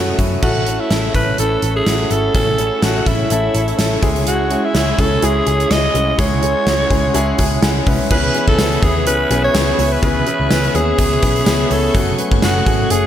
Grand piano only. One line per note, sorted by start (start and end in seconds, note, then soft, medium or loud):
0.00 0.18 A3 loud
0.00 0.18 C#4 loud
0.00 0.19 E4 medium
0.00 0.19 F#4 loud
0.00 0.43 A4 loud
0.18 0.34 A3 medium
0.18 0.35 C#4 medium
0.18 0.35 E4 medium
0.18 0.35 F#4 medium
0.42 0.58 A3 medium
0.42 0.59 C#4 medium
0.42 0.59 E4 medium
0.42 0.59 A4 medium
0.66 0.82 A3 medium
0.66 0.83 C#4 medium
0.66 0.83 E4 medium
0.66 0.83 A4 medium
0.90 1.06 A3 medium
0.90 1.07 C#4 medium
0.90 1.07 E4 medium
0.90 1.07 A4 medium
1.14 1.30 A3 medium
1.14 1.31 C#4 medium
1.14 1.31 E4 medium
1.14 1.31 A4 medium
1.38 1.54 A3 medium
1.38 1.55 C#4 medium
1.38 1.55 E4 medium
1.38 1.55 A4 loud
1.62 1.79 A3 medium
1.62 1.79 C#4 medium
1.62 1.79 E4 medium
1.62 1.79 A4 medium
1.86 2.02 A3 medium
1.86 2.03 C#4 medium
1.86 2.03 E4 medium
1.86 2.03 F#4 medium
2.10 2.26 A3 medium
2.10 2.27 C#4 medium
2.10 2.27 E4 medium
2.10 2.27 A4 medium
2.34 2.50 A3 medium
2.34 2.51 C#4 medium
2.34 2.51 E4 medium
2.34 2.51 G#4 medium
2.58 2.74 A3 medium
2.58 2.75 C#4 medium
2.58 2.75 E4 medium
2.58 2.75 A4 medium
2.82 2.98 A3 medium
2.82 2.99 C#4 medium
2.82 2.99 E4 medium
2.82 2.99 A4 medium
3.06 3.22 A3 medium
3.06 3.23 C#4 medium
3.06 3.23 E4 medium
3.06 3.23 A4 medium
3.30 3.46 A3 medium
3.30 3.47 C#4 medium
3.30 3.47 E4 medium
3.30 3.47 A4 loud
3.54 3.70 A3 medium
3.54 3.71 C#4 medium
3.54 3.71 E4 medium
3.54 3.71 A4 medium
3.78 3.94 A3 medium
3.78 3.95 C#4 medium
3.78 3.95 E4 medium
3.78 3.95 A4 medium
4.02 4.42 G#3 medium
4.02 4.42 C#4 medium
4.02 4.42 E4 medium
4.02 4.42 G#4 loud
4.50 4.66 G#3 medium
4.50 4.67 C#4 medium
4.50 4.67 E4 medium
4.50 4.67 G#4 medium
4.74 4.90 G#3 medium
4.74 4.91 C#4 medium
4.74 4.91 E4 medium
4.74 4.91 G#4 medium
4.98 5.14 G#3 medium
4.98 5.15 C#4 medium
4.98 5.15 E4 medium
4.98 5.15 G#4 medium
5.22 5.38 G#3 loud
5.22 5.39 C#4 medium
5.22 5.39 E4 medium
5.22 5.39 G#4 loud
5.46 5.62 G#3 medium
5.46 5.63 C#4 medium
5.46 5.63 E4 medium
5.46 5.63 G#4 medium
5.70 5.86 G#3 medium
5.70 5.87 C#4 medium
5.70 5.87 E4 medium
5.70 5.87 G#4 medium
5.94 6.10 G#3 medium
5.94 6.11 C#4 medium
5.94 6.11 E4 medium
5.94 6.11 G#4 medium
6.18 6.34 G#3 loud
6.18 6.35 C#4 medium
6.18 6.35 E4 medium
6.18 6.35 G#4 loud
6.42 6.58 G#3 medium
6.42 6.59 C#4 medium
6.42 6.59 E4 medium
6.42 6.59 G#4 medium
6.66 6.83 G#3 medium
6.66 6.83 C#4 medium
6.66 6.83 E4 medium
6.66 6.83 G#4 medium
6.90 7.06 G#3 medium
6.90 7.07 C#4 medium
6.90 7.07 E4 medium
6.90 7.07 G#4 loud
6.90 7.13 G#5 medium
7.14 7.30 G#3 loud
7.14 7.31 C#4 loud
7.14 7.31 E4 loud
7.14 7.31 G#4 loud
7.14 7.37 A5 medium
7.38 7.54 G#3 medium
7.38 7.55 C#4 medium
7.38 7.55 E4 medium
7.38 7.55 G#4 loud
7.38 7.61 G#5 medium
7.62 7.78 G#3 medium
7.62 7.79 C#4 medium
7.62 7.79 E4 medium
7.62 7.79 G#4 loud
7.62 7.85 F#5 medium
7.86 8.03 G#3 medium
7.86 8.03 C#4 medium
7.86 8.03 E4 medium
7.86 8.03 B4 loud
7.86 8.09 E5 medium
8.10 8.27 B3 medium
8.10 8.27 C#4 medium
8.10 8.27 E4 medium
8.10 8.27 G#4 loud
8.34 8.50 B3 medium
8.34 8.51 C#4 medium
8.34 8.51 E4 medium
8.34 8.51 G#4 medium
8.58 8.74 B3 medium
8.58 8.75 C#4 medium
8.58 8.75 E4 medium
8.58 8.75 G#4 medium
8.82 8.98 B3 medium
8.82 8.99 C#4 medium
8.82 8.99 E4 medium
8.82 8.99 G#4 medium
9.06 9.22 B3 medium
9.06 9.23 C#4 medium
9.06 9.23 E4 medium
9.06 9.23 G#4 medium
9.30 9.46 B3 loud
9.30 9.46 C#4 medium
9.30 9.47 E4 medium
9.30 9.47 G#4 loud
9.54 9.70 B3 loud
9.54 9.71 C#4 medium
9.54 9.71 E4 medium
9.54 9.71 G#4 loud
9.78 9.94 B3 medium
9.78 9.95 C#4 medium
9.78 9.95 E4 medium
9.78 9.95 G#4 medium
10.02 10.18 B3 loud
10.02 10.19 C#4 medium
10.02 10.19 E4 medium
10.02 10.19 G#4 loud
10.26 10.42 B3 medium
10.26 10.43 C#4 medium
10.26 10.43 E4 medium
10.26 10.43 G#4 medium
10.50 10.66 B3 medium
10.50 10.67 C#4 medium
10.50 10.67 E4 medium
10.50 10.67 G#4 medium
10.74 10.90 B3 medium
10.74 10.91 C#4 medium
10.74 10.91 E4 medium
10.74 10.91 G#4 medium
10.98 11.14 B3 medium
10.98 11.15 C#4 medium
10.98 11.15 E4 medium
10.98 11.15 G#4 medium
11.22 11.38 B3 medium
11.22 11.39 C#4 medium
11.22 11.39 E4 medium
11.22 11.39 G#4 loud
11.46 11.62 B3 loud
11.46 11.63 C#4 loud
11.46 11.63 E4 loud
11.46 11.63 G#4 loud
11.70 11.86 B3 medium
11.70 11.87 C#4 medium
11.70 11.87 E4 medium
11.70 11.87 G#4 medium
11.94 12.10 A3 medium
11.94 12.10 C#4 medium
11.94 12.11 F#4 medium
11.94 12.11 G#4 loud
12.18 12.34 A3 medium
12.18 12.35 C#4 medium
12.18 12.35 F#4 medium
12.18 12.35 B4 medium
12.42 12.58 A3 medium
12.42 12.59 C#4 medium
12.42 12.59 F#4 medium
12.42 12.59 G#4 medium
12.66 12.82 A3 medium
12.66 12.83 C#4 medium
12.66 12.83 F#4 medium
12.66 12.83 G#4 medium
12.90 13.06 A3 medium
12.90 13.07 C#4 medium
12.90 13.07 F#4 medium
12.90 13.07 G#4 medium